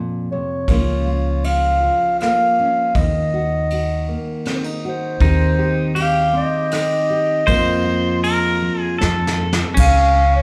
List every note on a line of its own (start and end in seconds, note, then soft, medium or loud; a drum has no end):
0.00 0.35 F2 medium
0.00 0.68 F2 medium
0.00 0.30 A#2 medium
0.00 0.64 A4 medium
0.31 0.68 C3 medium
0.31 1.47 C#5 medium
0.68 1.88 C#2 medium
0.68 1.82 C#3 medium
0.68 1.82 F3 soft
0.68 2.21 A#3 soft
0.68 1.43 C#4 medium
0.68 1.06 F4 medium
0.68 kick medium
0.68 ride soft
1.07 2.96 F4 medium
1.44 2.58 C#4 soft
1.44 2.19 F5 medium
1.44 ride soft
1.83 2.91 F3 soft
2.19 2.92 A#3 medium
2.19 2.97 F5 medium
2.19 cross-stick medium
2.19 ride soft
2.60 2.92 C#4 soft
2.95 4.14 D#2 medium
2.95 5.20 D#3 medium
2.95 4.46 D#5 medium
2.95 kick medium
2.95 ride soft
3.34 3.71 F#4 medium
3.70 4.84 F#4 medium
3.70 ride soft
4.08 5.17 A#3 medium
4.45 4.64 C4 medium
4.45 cross-stick medium
4.45 ride soft
4.64 5.21 D#4 soft
4.85 5.17 F#4 medium
4.85 5.95 C5 medium
5.20 6.40 D#2 medium
5.20 7.47 D#3 medium
5.20 6.33 C4 medium
5.20 5.93 D#4 medium
5.20 6.72 D#4 medium
5.20 5.58 G4 medium
5.20 kick medium
5.20 ride soft
5.59 5.95 G4 medium
5.95 7.53 G4 medium
5.95 7.09 G4 medium
5.95 ride medium
6.01 6.35 F5 loud
6.33 7.48 C4 medium
6.37 8.98 D#5 loud
6.71 7.44 D#4 medium
6.71 cross-stick medium
6.71 ride medium
7.10 7.44 G4 medium
7.46 8.99 F2 medium
7.46 8.68 F2 medium
7.46 8.61 F3 medium
7.46 8.96 A#3 medium
7.46 8.25 C4 medium
7.46 7.84 F4 medium
7.46 8.20 C5 loud
7.46 kick medium
7.46 ride medium
7.85 9.37 F4 medium
8.24 8.82 A#4 loud
8.24 ride medium
8.62 8.96 F3 medium
8.82 9.03 G#4 loud
8.98 9.78 F2 medium
8.98 9.62 F2 loud
8.98 9.73 A4 medium
8.98 snare soft
9.27 snare medium
9.38 9.72 A4 medium
9.53 snare medium
9.74 10.42 C#2 medium
9.74 10.42 C#3 medium
9.74 10.42 C#4 medium
9.74 kick medium
9.74 crash medium
9.79 10.32 F5 loud
10.15 10.42 C#4 soft
10.36 10.42 C#5 medium